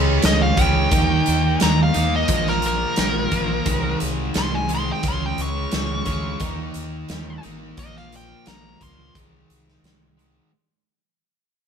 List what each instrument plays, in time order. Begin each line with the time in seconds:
Already playing: fingered electric bass C#2, overdriven electric guitar C#3 G#3 C#4
0.22 fingered electric bass C#2, lead electric guitar D#5, snare, closed hi-hat
0.42 lead electric guitar F5
0.57 fingered electric bass C#2, overdriven electric guitar G#3 C#4, kick, closed hi-hat
0.61 overdriven electric guitar C#3, lead electric guitar G5
0.91 fingered electric bass D#2, overdriven electric guitar D#3 A#3 D#4, kick, closed hi-hat
1.26 fingered electric bass D#2, closed hi-hat
1.60 fingered electric bass D#2, lead electric guitar A#5, snare, closed hi-hat
1.83 lead electric guitar F5
1.93 fingered electric bass D#2, overdriven electric guitar D#3 A#3 D#4, closed hi-hat
2.16 lead electric guitar D#5
2.28 fingered electric bass A#1, overdriven electric guitar A#2 F3 A#3, kick, closed hi-hat
2.47 lead electric guitar A#4, snare
2.62 closed hi-hat
2.67 lead electric guitar A#4
2.96 fingered electric bass A#1, snare, closed hi-hat
3.31 fingered electric bass A#1, overdriven electric guitar F3 A#3, kick, closed hi-hat
3.36 overdriven electric guitar A#2
3.66 fingered electric bass C2, overdriven electric guitar G#2 D#3 G#3, kick, closed hi-hat
4.00 fingered electric bass C2, closed hi-hat
4.34 fingered electric bass C2, snare, closed hi-hat
4.38 lead electric guitar C6
4.55 lead electric guitar G#5
4.68 overdriven electric guitar G#2 D#3 G#3, closed hi-hat
4.75 lead electric guitar C6
4.92 lead electric guitar G5
5.03 fingered electric bass C#2, overdriven electric guitar C#3 G#3, kick, closed hi-hat
5.07 overdriven electric guitar C#4, lead electric guitar C6
5.26 lead electric guitar G5
5.38 fingered electric bass C#2, lead electric guitar C#6, closed hi-hat
5.71 fingered electric bass C#2, snare, closed hi-hat
6.05 fingered electric bass D2, overdriven electric guitar C#3 G#3 C#4, kick, closed hi-hat
6.39 fingered electric bass D#2, overdriven electric guitar D#3 A#3 D#4, kick, closed hi-hat
6.74 fingered electric bass D#2, closed hi-hat
7.09 fingered electric bass D#2, snare, closed hi-hat
7.42 fingered electric bass G#1, overdriven electric guitar D#3 A#3 D#4, closed hi-hat
7.77 fingered electric bass A#1, overdriven electric guitar A#2 F3 A#3, lead electric guitar D#5, kick, closed hi-hat
7.96 lead electric guitar F5, snare
8.12 lead electric guitar G5, closed hi-hat
8.46 fingered electric bass A#1, lead electric guitar A#5, snare, closed hi-hat
8.80 fingered electric bass C#2, overdriven electric guitar A#2 F3 A#3, lead electric guitar C6, kick, closed hi-hat
9.14 fingered electric bass C2, overdriven electric guitar G#2 D#3 G#3, kick, closed hi-hat
9.50 fingered electric bass C2, closed hi-hat
9.68 snare
9.83 fingered electric bass C2, snare, closed hi-hat
10.17 overdriven electric guitar G#2 D#3 G#3, closed hi-hat